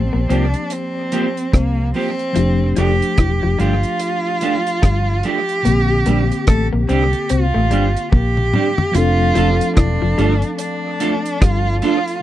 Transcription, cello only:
0.00 0.32 C4 medium
0.31 0.73 D4 medium
0.72 1.56 C4 medium
1.54 1.95 A#3 medium
1.95 2.73 C4 loud
2.78 3.62 G4 loud
3.60 5.26 F4 loud
5.25 6.48 G4 loud
6.48 6.67 A4 loud
6.90 7.33 G4 loud
7.31 8.12 F4 medium
8.13 8.96 G4 loud
8.95 9.76 F4 loud
9.77 10.55 D4 loud
10.59 11.42 D4 loud
11.41 11.82 F4 loud
11.82 12.21 F4 loud

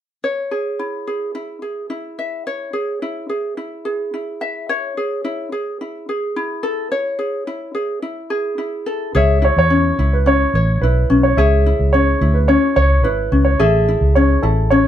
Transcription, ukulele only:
0.24 2.18 C#5 medium
0.51 1.07 G#4 soft
0.79 1.35 E4 soft
1.07 1.34 G#4 soft
1.35 1.62 E4 soft
1.62 1.89 G#4 soft
1.90 2.73 E4 soft
2.19 2.46 E5 medium
2.47 4.69 C#5 medium
2.73 3.02 G#4 soft
3.02 3.29 E4 soft
3.29 3.57 G#4 soft
3.57 4.13 E4 soft
3.85 4.97 G#4 soft
4.14 4.97 E4 soft
4.41 4.69 E5 medium
4.69 6.92 C#5 medium
4.97 5.24 G#4 soft
5.25 5.52 E4 medium
5.52 5.81 G#4 soft
5.81 6.09 E4 soft
6.09 7.18 G#4 soft
6.36 7.47 E4 soft
6.63 6.91 A4 medium
6.92 8.86 C#5 medium
7.19 7.47 G#4 soft
7.47 7.74 E4 medium
7.75 8.02 G#4 soft
8.02 8.58 E4 soft
8.30 9.15 G#4 soft
8.58 9.14 E4 medium
8.86 9.15 A4 medium
9.15 9.42 G#4 medium
9.15 10.55 C#5 medium
9.42 9.99 E4 soft
9.70 10.26 C#4 medium
9.99 10.83 E4 medium
10.26 11.09 C#4 medium
10.55 11.39 C#5 medium
10.83 11.66 E4 soft
11.10 11.94 C#4 medium
11.38 13.59 G#4 medium
11.38 12.76 C#5 medium
11.66 12.21 E4 soft
11.94 12.48 C#4 medium
12.21 13.04 E4 medium
12.48 13.32 C#4 medium
12.76 13.60 C#5 medium
13.04 13.88 E4 medium
13.32 14.16 C#4 soft
13.60 14.88 G#4 medium
13.60 14.88 A4 medium
13.88 14.42 E4 soft
14.16 14.71 C#4 medium
14.43 14.88 E4 medium
14.71 14.88 C#4 medium

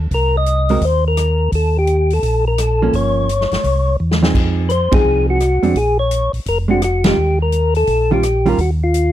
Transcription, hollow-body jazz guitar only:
0.70 0.81 G#3 medium
0.70 0.81 C4 medium
0.70 0.82 F#4 medium
0.70 0.82 A#4 medium
2.82 3.27 F3 medium
2.82 3.27 A#3 medium
2.82 3.28 C#4 medium
4.23 4.68 F3 medium
4.23 4.68 C4 medium
4.23 4.68 D#4 medium
4.23 4.68 G#4 medium
4.92 5.38 F3 medium
4.92 5.38 C4 medium
4.92 5.38 D#4 medium
4.92 5.38 G#4 medium
5.63 5.74 G#3 medium
5.63 5.75 C4 medium
5.63 5.75 D4 medium
6.68 6.80 G#3 medium
6.68 6.81 C4 medium
6.68 6.81 D4 medium
7.05 7.16 D#3 medium
7.05 7.16 G3 medium
7.05 7.16 C#4 medium
7.05 7.16 F4 medium
8.11 8.22 D#3 medium
8.11 8.22 G3 medium
8.11 8.23 C#4 medium
8.11 8.23 F4 medium
8.46 8.57 D#3 medium
8.46 8.57 G3 medium
8.46 8.57 C#4 medium
8.46 8.58 F4 medium

